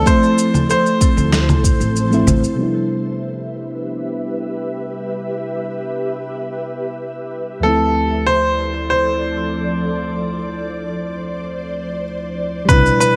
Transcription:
0.00 0.02 F3 loud
0.00 2.55 F3 medium
0.00 1.74 F3 medium
0.00 0.05 A3 medium
0.00 0.07 C4 medium
0.00 0.10 E4 loud
0.00 2.55 A4 medium
0.05 1.76 A3 medium
0.05 0.34 A3 loud
0.05 1.77 C4 medium
0.05 2.57 C5 medium
0.05 0.66 C5 loud
0.05 kick loud
0.05 shaker soft
0.10 1.78 E4 medium
0.23 shaker soft
0.38 shaker medium
0.54 low conga medium
0.54 shaker soft
0.69 0.87 A4 medium
0.69 2.24 C5 medium
0.69 shaker soft
0.86 shaker soft
1.01 1.31 C4 loud
1.01 kick loud
1.01 shaker medium
1.17 1.64 D2 medium
1.17 shaker soft
1.32 snare medium
1.32 shaker soft
1.49 low conga medium
1.49 shaker soft
1.64 1.78 A1 loud
1.64 kick medium
1.64 shaker medium
1.80 2.23 A1 medium
1.80 shaker soft
1.96 shaker soft
2.10 2.54 F3 medium
2.10 2.55 A3 medium
2.10 2.55 C4 medium
2.10 2.56 E4 medium
2.10 shaker soft
2.27 2.41 A1 loud
2.27 2.45 C5 medium
2.27 low conga medium
2.27 shaker medium
2.44 shaker soft
2.55 7.58 C3 medium
2.55 7.59 G3 medium
2.55 7.60 B3 medium
2.55 7.60 G4 medium
2.55 7.60 B4 medium
2.59 7.61 D4 medium
2.59 7.62 E4 medium
2.59 7.60 E5 medium
7.60 12.63 D2 medium
7.60 12.64 F3 medium
7.60 12.65 F3 medium
7.60 12.65 A3 medium
7.60 8.23 A4 medium
7.60 10.14 A4 medium
7.60 12.65 D5 medium
7.65 12.66 C4 medium
7.65 12.67 E4 medium
8.26 8.88 C5 loud
8.90 12.02 C5 medium
10.16 12.66 C5 medium
12.65 12.83 C2 loud
12.65 13.16 B2 medium
12.65 13.16 G3 medium
12.65 12.99 B4 loud
12.65 13.16 E5 medium
12.65 kick loud
12.69 13.16 D4 medium
12.69 13.16 E4 medium
12.69 13.16 G4 medium
12.69 shaker soft
12.86 shaker soft
13.00 13.16 B4 loud
13.00 shaker medium

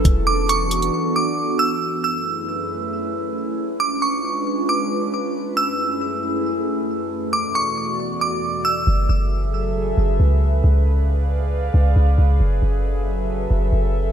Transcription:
0.00 1.78 A4 medium
0.05 0.90 E1 loud
0.05 1.80 E3 medium
0.05 1.80 B3 medium
0.05 1.80 D4 medium
0.05 1.80 F#4 medium
0.05 kick loud
0.05 closed hi-hat medium
0.27 0.48 D6 medium
0.49 1.11 C#6 loud
0.49 closed hi-hat medium
0.71 closed hi-hat medium
0.71 open hi-hat medium
0.82 closed hi-hat soft
1.16 1.57 D6 medium
1.59 1.80 E6 medium
1.82 3.56 F#2 medium
1.82 3.56 A3 medium
1.82 7.07 C#4 medium
1.82 3.56 E4 medium
1.82 3.56 G#4 medium
1.82 3.56 B4 medium
2.04 3.54 E6 medium
3.58 5.33 G#3 medium
3.58 5.33 D4 medium
3.58 5.33 F4 medium
3.58 7.07 B4 medium
3.80 4.01 D6 medium
4.02 4.64 C#6 medium
4.69 4.90 D6 medium
5.35 7.09 F#2 medium
5.35 8.84 A3 medium
5.35 7.09 E4 medium
5.35 7.09 G#4 medium
5.57 7.07 E6 medium
7.11 8.86 E2 medium
7.11 8.86 B2 medium
7.11 8.86 F#4 medium
7.11 8.86 D5 medium
7.33 7.54 D6 medium
7.55 8.17 C#6 medium
8.21 8.63 D6 medium
8.65 8.86 E6 medium
8.87 9.08 F#1 loud
8.87 14.12 C#3 medium
8.87 10.62 F#3 medium
8.87 10.62 G#4 medium
8.87 10.62 A4 medium
8.87 14.12 B4 medium
8.87 10.62 E5 medium
9.09 9.94 F#1 loud
9.97 10.19 F#1 loud
10.20 10.62 C#2 loud
10.64 11.70 C#2 loud
10.64 14.12 G#4 medium
10.64 12.39 D5 medium
10.64 12.38 F5 medium
11.74 11.95 C#2 loud
11.96 12.17 C#2 loud
12.18 12.39 C#2 loud
12.40 12.61 F#1 loud
12.40 14.12 F#3 medium
12.40 14.12 A4 medium
12.40 14.12 E5 medium
12.62 13.47 F#1 loud
13.51 13.72 F#1 loud
13.73 14.12 F#1 loud

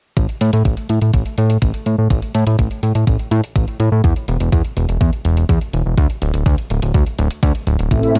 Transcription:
0.17 0.27 A1 loud
0.17 kick loud
0.17 closed hi-hat medium
0.29 closed hi-hat soft
0.41 0.51 A2 medium
0.41 closed hi-hat medium
0.53 0.63 A2 medium
0.53 closed hi-hat soft
0.65 0.75 A1 medium
0.65 kick loud
0.65 closed hi-hat medium
0.77 closed hi-hat soft
0.89 0.99 A2 medium
0.89 closed hi-hat medium
1.01 1.11 A2 medium
1.01 closed hi-hat soft
1.13 1.24 A1 medium
1.13 kick loud
1.13 closed hi-hat medium
1.26 closed hi-hat soft
1.38 1.58 A2 medium
1.38 closed hi-hat medium
1.50 closed hi-hat soft
1.62 1.72 A1 medium
1.62 kick loud
1.62 closed hi-hat loud
1.74 closed hi-hat soft
1.86 1.96 A2 medium
1.86 closed hi-hat soft
1.98 2.08 A2 medium
2.10 2.20 A1 loud
2.10 kick loud
2.10 closed hi-hat medium
2.22 closed hi-hat soft
2.35 2.44 A2 loud
2.35 closed hi-hat medium
2.47 2.56 A2 medium
2.47 closed hi-hat soft
2.59 2.69 A1 medium
2.59 kick loud
2.59 closed hi-hat medium
2.71 closed hi-hat soft
2.83 2.93 A2 medium
2.83 closed hi-hat medium
2.95 3.05 A2 medium
2.95 closed hi-hat soft
3.07 3.17 A1 medium
3.07 kick loud
3.07 closed hi-hat medium
3.19 closed hi-hat soft
3.31 3.41 A2 loud
3.31 closed hi-hat medium
3.44 closed hi-hat soft
3.56 3.65 A1 medium
3.56 kick loud
3.56 closed hi-hat medium
3.68 closed hi-hat soft
3.80 3.90 A2 medium
3.80 closed hi-hat soft
3.92 4.02 A2 medium
4.04 4.14 E2 loud
4.04 kick loud
4.04 closed hi-hat medium
4.16 closed hi-hat soft
4.28 4.38 E1 loud
4.28 closed hi-hat medium
4.40 4.50 E1 medium
4.40 closed hi-hat soft
4.52 4.62 E2 medium
4.52 kick loud
4.52 closed hi-hat medium
4.64 closed hi-hat soft
4.77 4.86 E1 medium
4.77 closed hi-hat medium
4.89 4.98 E1 medium
4.89 closed hi-hat soft
5.01 5.11 E2 medium
5.01 kick loud
5.01 closed hi-hat medium
5.13 closed hi-hat soft
5.25 5.45 E1 medium
5.25 closed hi-hat medium
5.37 closed hi-hat soft
5.49 5.59 E2 medium
5.49 kick loud
5.49 closed hi-hat medium
5.61 closed hi-hat soft
5.73 5.83 E1 medium
5.73 closed hi-hat soft
5.86 5.95 E1 medium
5.98 6.07 D2 loud
5.98 kick loud
5.98 closed hi-hat medium
6.10 closed hi-hat soft
6.22 6.32 D1 loud
6.22 closed hi-hat medium
6.34 6.44 D1 medium
6.34 closed hi-hat soft
6.46 6.56 D2 medium
6.46 kick loud
6.46 closed hi-hat medium
6.58 closed hi-hat soft
6.70 6.80 D1 medium
6.70 closed hi-hat medium
6.82 6.92 D1 medium
6.82 closed hi-hat soft
6.94 7.04 D2 medium
6.94 kick loud
6.94 closed hi-hat medium
7.06 closed hi-hat soft
7.18 7.28 D1 loud
7.18 closed hi-hat medium
7.31 closed hi-hat soft
7.43 7.53 D2 loud
7.43 kick loud
7.43 closed hi-hat medium
7.55 closed hi-hat soft
7.67 7.77 D1 medium
7.67 closed hi-hat soft
7.79 7.89 D1 medium
7.79 closed hi-hat soft
7.91 8.01 A1 loud
7.91 8.16 A2 medium
7.91 8.16 C4 medium
7.91 8.16 E4 medium
7.91 8.16 A4 medium
7.91 8.16 E5 medium
7.91 kick loud
7.91 closed hi-hat medium
8.03 closed hi-hat soft
8.15 8.19 A2 medium
8.15 closed hi-hat medium

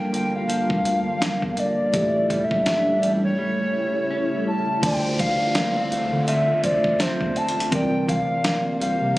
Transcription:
0.00 1.93 G2 medium
0.00 1.91 D3 medium
0.00 0.12 F3 medium
0.00 1.89 G3 medium
0.00 4.79 G3 medium
0.00 1.20 A#3 medium
0.00 1.91 A#3 medium
0.00 1.90 D4 medium
0.00 1.93 D4 medium
0.00 1.91 F4 medium
0.00 1.90 A4 medium
0.00 1.91 A#4 medium
0.00 1.91 F5 medium
0.00 0.11 G5 loud
0.00 swell medium
0.13 0.42 G1 medium
0.13 0.48 F3 medium
0.13 0.33 G5 loud
0.13 closed hi-hat medium
0.36 1.60 F5 loud
0.49 0.58 D2 soft
0.49 2.02 F3 medium
0.49 closed hi-hat medium
0.70 0.99 D2 loud
0.70 kick loud
0.85 closed hi-hat medium
1.21 1.30 E2 soft
1.21 2.02 A#3 medium
1.21 snare loud
1.21 closed hi-hat medium
1.42 1.55 E2 medium
1.42 kick loud
1.57 2.45 D5 medium
1.57 closed hi-hat medium
1.79 1.91 G1 medium
1.91 2.23 A1 loud
1.91 4.78 A2 medium
1.91 4.83 A2 medium
1.91 4.80 C#3 medium
1.91 4.79 A3 medium
1.91 4.80 A3 medium
1.91 4.80 E4 medium
1.91 4.83 E4 medium
1.91 4.79 G4 medium
1.91 4.80 A4 medium
1.91 kick loud
1.91 closed hi-hat medium
1.96 4.80 E5 medium
2.30 3.01 G3 medium
2.30 kick medium
2.30 closed hi-hat medium
2.44 2.67 E5 medium
2.51 2.63 G1 loud
2.51 kick loud
2.66 4.09 C#4 medium
2.66 3.12 E5 medium
2.66 snare loud
2.66 closed hi-hat medium
2.87 2.93 A1 medium
3.02 3.31 A1 medium
3.02 3.37 G3 medium
3.02 closed hi-hat medium
3.24 4.43 C#5 medium
3.38 4.91 G3 medium
4.11 4.91 C#4 medium
4.48 4.81 A5 medium
4.81 5.29 D2 loud
4.81 6.59 D3 medium
4.81 7.71 D3 medium
4.81 7.69 D3 medium
4.81 6.60 A3 medium
4.81 7.69 A3 medium
4.81 7.69 C4 medium
4.81 7.69 F4 medium
4.81 6.60 F4 medium
4.81 6.61 C5 medium
4.81 5.17 G5 loud
4.81 kick loud
4.81 closed hi-hat medium
4.81 downlifter medium
4.86 6.62 D5 medium
5.19 5.88 F5 loud
5.19 kick medium
5.19 closed hi-hat medium
5.55 5.76 A#3 medium
5.55 snare loud
5.55 closed hi-hat medium
5.76 6.27 C4 medium
5.91 6.08 D2 medium
5.91 6.26 A3 medium
5.91 6.25 F5 medium
5.91 closed hi-hat medium
6.13 6.53 D3 loud
6.27 7.80 A3 medium
6.27 7.00 C4 medium
6.27 7.81 F4 medium
6.27 6.61 E5 medium
6.27 closed hi-hat medium
6.63 6.93 D2 medium
6.63 7.72 D3 medium
6.63 7.72 A3 soft
6.63 7.73 F4 soft
6.63 7.73 C5 soft
6.63 7.02 D5 medium
6.63 7.73 E5 medium
6.63 kick loud
6.63 closed hi-hat medium
6.84 kick medium
7.00 7.08 E2 medium
7.00 8.44 C4 medium
7.00 7.38 C5 medium
7.00 snare loud
7.00 closed hi-hat medium
7.21 7.33 E2 medium
7.21 kick medium
7.36 7.72 A5 loud
7.36 closed hi-hat soft
7.48 closed hi-hat medium
7.57 7.74 A#1 loud
7.57 closed hi-hat medium
7.70 8.18 C2 loud
7.70 9.18 C3 medium
7.70 9.18 E3 medium
7.70 9.18 A#3 medium
7.70 9.18 C4 medium
7.70 9.18 G4 medium
7.70 9.18 A#4 medium
7.70 8.06 G5 loud
7.70 kick loud
7.70 closed hi-hat medium
7.75 9.18 D5 medium
8.09 8.77 F5 loud
8.09 kick loud
8.09 closed hi-hat medium
8.44 9.17 A#3 medium
8.44 snare loud
8.44 closed hi-hat medium
8.80 8.97 C2 loud
8.80 9.16 G3 medium
8.80 9.18 F5 medium
8.80 closed hi-hat medium
9.02 9.18 C3 loud

